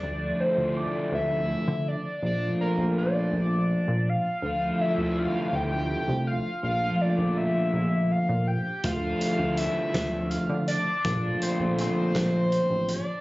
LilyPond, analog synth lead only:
\new Staff \with { instrumentName = "Analog synth lead" } { \time 6/8 \key d \minor \tempo 4. = 54 d''8 c''8 d''8 e''4 d''8 | d''8 bes'8 d''4. f''8~ | f''8 e''8 f''8 g''4 f''8 | f''8 d''8 e''4 f''8 g''8 |
f''4 e''4 f''8 d''8~ | d''8 c''8 c''4. d''8 | }